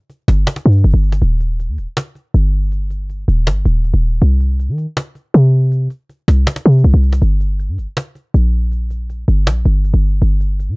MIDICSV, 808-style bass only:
0, 0, Header, 1, 2, 480
1, 0, Start_track
1, 0, Key_signature, -2, "minor"
1, 0, Tempo, 375000
1, 1559, Time_signature, 4, 2, 24, 8
1, 13777, End_track
2, 0, Start_track
2, 0, Title_t, "808-style bass"
2, 0, Program_c, 0, 38
2, 359, Note_on_c, 0, 31, 106
2, 590, Note_off_c, 0, 31, 0
2, 839, Note_on_c, 0, 43, 107
2, 1070, Note_off_c, 0, 43, 0
2, 1079, Note_on_c, 0, 31, 116
2, 1194, Note_off_c, 0, 31, 0
2, 1199, Note_on_c, 0, 31, 104
2, 1545, Note_off_c, 0, 31, 0
2, 1559, Note_on_c, 0, 27, 105
2, 2159, Note_on_c, 0, 39, 100
2, 2178, Note_off_c, 0, 27, 0
2, 2279, Note_on_c, 0, 27, 98
2, 2298, Note_off_c, 0, 39, 0
2, 2393, Note_off_c, 0, 27, 0
2, 3000, Note_on_c, 0, 31, 117
2, 4152, Note_off_c, 0, 31, 0
2, 4199, Note_on_c, 0, 27, 108
2, 4439, Note_on_c, 0, 31, 98
2, 4458, Note_off_c, 0, 27, 0
2, 4667, Note_off_c, 0, 31, 0
2, 4679, Note_on_c, 0, 27, 108
2, 5025, Note_off_c, 0, 27, 0
2, 5039, Note_on_c, 0, 27, 101
2, 5385, Note_off_c, 0, 27, 0
2, 5398, Note_on_c, 0, 36, 106
2, 5999, Note_on_c, 0, 51, 100
2, 6018, Note_off_c, 0, 36, 0
2, 6227, Note_off_c, 0, 51, 0
2, 6839, Note_on_c, 0, 48, 117
2, 7530, Note_off_c, 0, 48, 0
2, 8038, Note_on_c, 0, 36, 106
2, 8269, Note_off_c, 0, 36, 0
2, 8519, Note_on_c, 0, 48, 108
2, 8750, Note_off_c, 0, 48, 0
2, 8760, Note_on_c, 0, 36, 114
2, 8875, Note_off_c, 0, 36, 0
2, 8880, Note_on_c, 0, 36, 105
2, 9225, Note_off_c, 0, 36, 0
2, 9239, Note_on_c, 0, 31, 102
2, 9838, Note_on_c, 0, 43, 101
2, 9858, Note_off_c, 0, 31, 0
2, 9959, Note_on_c, 0, 31, 96
2, 9978, Note_off_c, 0, 43, 0
2, 10073, Note_off_c, 0, 31, 0
2, 10679, Note_on_c, 0, 34, 110
2, 11831, Note_off_c, 0, 34, 0
2, 11879, Note_on_c, 0, 31, 107
2, 12119, Note_on_c, 0, 34, 94
2, 12138, Note_off_c, 0, 31, 0
2, 12347, Note_off_c, 0, 34, 0
2, 12358, Note_on_c, 0, 31, 106
2, 12705, Note_off_c, 0, 31, 0
2, 12719, Note_on_c, 0, 31, 104
2, 13065, Note_off_c, 0, 31, 0
2, 13079, Note_on_c, 0, 31, 101
2, 13679, Note_on_c, 0, 46, 101
2, 13699, Note_off_c, 0, 31, 0
2, 13777, Note_off_c, 0, 46, 0
2, 13777, End_track
0, 0, End_of_file